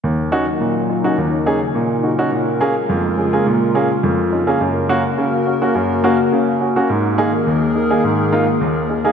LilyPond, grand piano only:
<<
  \new Staff \with { instrumentName = "Grand piano" } { \time 4/4 \key ees \minor \tempo 4 = 105 r8 <des' ees' ges'>16 r8. <ees' f'>16 <des' ees' ges'>16 r8 <des' ees' aes'>16 r8. <ees' ges'>16 <des' ees' ges'>16 | r8 <bes des' aes'>16 r8. <des' aes'>16 <bes des' aes'>16 r8 <bes des' aes'>16 r8. <des' ees'>16 <bes des' aes'>16 | r8 <bes des' ges'>16 r8. <des' ges'>16 <bes des' ges'>16 r8 <bes des' ges'>16 r8. <des' ges'>16 <bes des' ges'>16 | r8 <bes ees' aes'>16 r8. <ees' aes'>16 <bes ees' aes'>16 r8 <bes ees' f'>16 r8. <ees' aes'>16 <bes ees' aes'>16 | }
  \new Staff \with { instrumentName = "Grand piano" } { \clef bass \time 4/4 \key ees \minor ees,4 bes,4 ees,4 bes,4 | bes,4 f,4 bes,4 f,4 | ges,4 des4 ges,4 des4 | aes,4 ees,4 aes,4 ees,4 | }
>>